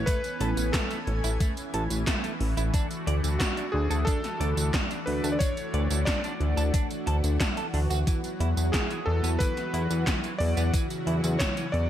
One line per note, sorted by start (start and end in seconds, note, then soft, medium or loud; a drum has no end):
0.00 8.03 E3 medium
0.00 2.70 B3 medium
0.00 2.70 C#4 medium
0.06 0.20 A3 medium
0.06 0.75 B4 loud
0.06 2.71 G#5 medium
0.06 kick loud
0.06 closed hi-hat loud
0.06 tambourine soft
0.24 closed hi-hat soft
0.24 tambourine soft
0.40 0.55 A1 loud
0.40 0.49 A4 medium
0.40 closed hi-hat medium
0.57 0.71 A1 medium
0.57 closed hi-hat soft
0.57 tambourine medium
0.72 0.86 A3 medium
0.72 1.36 A4 medium
0.72 kick loud
0.72 snare loud
0.72 clap loud
0.72 closed hi-hat loud
0.72 tambourine soft
0.91 0.99 A3 medium
0.91 closed hi-hat soft
0.91 tambourine soft
1.07 1.21 A1 loud
1.07 closed hi-hat soft
1.24 1.38 A1 medium
1.24 1.29 E4 loud
1.24 closed hi-hat soft
1.24 tambourine medium
1.40 1.53 A3 medium
1.40 kick loud
1.40 closed hi-hat loud
1.40 tambourine soft
1.57 closed hi-hat soft
1.57 tambourine soft
1.74 1.88 A1 loud
1.74 1.82 A4 medium
1.74 closed hi-hat medium
1.90 2.05 A1 medium
1.90 closed hi-hat soft
1.90 tambourine medium
2.07 2.20 A3 medium
2.07 kick loud
2.07 snare loud
2.07 clap loud
2.07 closed hi-hat loud
2.07 tambourine soft
2.24 2.32 A3 medium
2.24 closed hi-hat soft
2.24 tambourine soft
2.41 2.55 A1 medium
2.41 open hi-hat medium
2.57 2.71 A1 medium
2.57 2.62 E4 loud
2.57 closed hi-hat soft
2.57 tambourine medium
2.74 8.03 A3 medium
2.74 8.03 D4 medium
2.74 2.86 D4 medium
2.74 11.90 F#4 medium
2.74 kick loud
2.74 closed hi-hat loud
2.74 tambourine soft
2.91 closed hi-hat soft
2.91 tambourine soft
3.07 3.21 D2 loud
3.07 3.15 D5 medium
3.07 closed hi-hat medium
3.24 3.38 D2 medium
3.24 closed hi-hat soft
3.24 tambourine medium
3.39 3.53 D4 medium
3.39 3.74 F#4 medium
3.39 kick loud
3.39 snare loud
3.39 clap loud
3.39 closed hi-hat loud
3.39 tambourine soft
3.57 3.65 D4 medium
3.57 closed hi-hat soft
3.57 tambourine soft
3.72 3.88 D2 loud
3.72 4.07 G#4 loud
3.90 4.05 D2 medium
3.90 3.95 A4 loud
3.90 closed hi-hat soft
3.90 tambourine medium
4.05 4.20 D4 medium
4.05 4.69 A4 loud
4.05 kick loud
4.05 closed hi-hat loud
4.05 tambourine soft
4.24 snare soft
4.24 closed hi-hat soft
4.24 tambourine soft
4.40 4.55 D2 medium
4.40 4.49 D5 medium
4.40 closed hi-hat medium
4.57 4.71 D2 medium
4.57 closed hi-hat soft
4.57 tambourine medium
4.74 4.86 D4 medium
4.74 kick loud
4.74 snare loud
4.74 clap medium
4.74 closed hi-hat loud
4.74 tambourine medium
4.91 4.99 D4 medium
4.91 closed hi-hat soft
4.91 tambourine soft
5.06 5.21 D2 medium
5.06 5.34 B4 medium
5.06 open hi-hat medium
5.24 5.38 D2 medium
5.24 5.29 A4 loud
5.24 closed hi-hat soft
5.24 tambourine medium
5.32 5.40 D5 medium
5.39 5.53 D4 medium
5.39 6.08 C#5 loud
5.39 kick loud
5.39 closed hi-hat medium
5.39 tambourine medium
5.57 closed hi-hat soft
5.57 tambourine soft
5.74 5.88 D2 loud
5.74 5.82 D5 medium
5.74 closed hi-hat medium
5.90 6.05 D2 medium
5.90 closed hi-hat soft
5.90 tambourine medium
6.05 6.20 D4 medium
6.05 6.69 D5 loud
6.05 kick loud
6.05 snare loud
6.05 clap medium
6.05 closed hi-hat medium
6.05 tambourine medium
6.24 6.32 D4 medium
6.24 closed hi-hat soft
6.24 tambourine soft
6.40 6.55 D2 medium
6.40 closed hi-hat soft
6.57 6.71 D2 medium
6.57 6.62 A4 loud
6.57 closed hi-hat soft
6.57 tambourine medium
6.74 6.86 D4 medium
6.74 kick loud
6.74 closed hi-hat loud
6.74 tambourine medium
6.90 closed hi-hat soft
6.90 tambourine soft
7.07 7.21 D2 medium
7.07 7.15 A4 loud
7.07 closed hi-hat medium
7.24 7.38 D2 medium
7.24 closed hi-hat soft
7.24 tambourine medium
7.40 7.45 D4 medium
7.40 kick loud
7.40 snare loud
7.40 clap medium
7.40 closed hi-hat medium
7.40 tambourine medium
7.57 7.65 A4 medium
7.57 closed hi-hat soft
7.57 tambourine soft
7.74 7.88 D2 medium
7.74 7.79 D4 medium
7.74 open hi-hat medium
7.90 8.05 D2 medium
7.90 7.99 F#4 medium
7.90 closed hi-hat soft
7.90 tambourine medium
8.07 11.90 E3 medium
8.07 8.20 E3 medium
8.07 11.90 F#3 medium
8.07 10.71 B3 medium
8.07 kick loud
8.07 closed hi-hat medium
8.07 tambourine medium
8.24 closed hi-hat soft
8.24 tambourine soft
8.40 8.55 E2 medium
8.40 8.49 E4 medium
8.40 closed hi-hat medium
8.57 8.71 E2 medium
8.57 closed hi-hat soft
8.57 tambourine medium
8.72 8.86 E3 medium
8.72 9.07 G#4 medium
8.72 kick loud
8.72 snare loud
8.72 clap medium
8.72 closed hi-hat medium
8.72 tambourine medium
8.90 8.99 E3 medium
8.90 closed hi-hat soft
8.90 tambourine soft
9.06 9.21 E2 medium
9.06 9.41 A4 loud
9.23 9.38 E2 medium
9.23 9.29 B3 loud
9.23 closed hi-hat soft
9.23 tambourine medium
9.39 9.53 E3 medium
9.39 10.02 B4 loud
9.39 kick loud
9.39 closed hi-hat medium
9.39 tambourine medium
9.57 snare soft
9.57 closed hi-hat soft
9.57 tambourine soft
9.73 9.88 E2 medium
9.73 9.82 E4 medium
9.73 closed hi-hat medium
9.90 10.05 E2 medium
9.90 closed hi-hat soft
9.90 tambourine medium
10.07 10.20 E3 medium
10.07 kick loud
10.07 snare loud
10.07 clap medium
10.07 closed hi-hat medium
10.07 tambourine medium
10.24 10.32 E3 medium
10.24 closed hi-hat soft
10.24 tambourine soft
10.39 10.55 E2 medium
10.39 10.70 D5 loud
10.39 open hi-hat medium
10.57 10.71 E2 medium
10.57 10.62 B3 loud
10.57 closed hi-hat soft
10.57 tambourine medium
10.74 11.90 C#3 medium
10.74 10.86 E3 medium
10.74 kick loud
10.74 closed hi-hat medium
10.74 tambourine medium
10.90 closed hi-hat soft
10.90 tambourine soft
11.07 11.21 E2 loud
11.07 11.15 E4 medium
11.07 closed hi-hat medium
11.23 11.38 E2 medium
11.23 closed hi-hat soft
11.23 tambourine medium
11.39 11.53 E3 medium
11.39 11.74 C#5 medium
11.39 kick loud
11.39 snare loud
11.39 clap loud
11.39 closed hi-hat medium
11.39 tambourine medium
11.57 11.65 E3 medium
11.57 closed hi-hat soft
11.57 tambourine soft
11.72 11.88 E2 medium
11.72 11.90 D5 medium
11.72 closed hi-hat soft